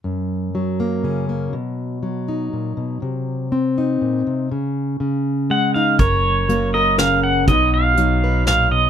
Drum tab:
HH |------|------|------|------|
SD |------|------|------|------|
BD |------|------|------|------|

HH |x-x-x-|x-x-x-|
SD |----o-|----o-|
BD |o-----|o-----|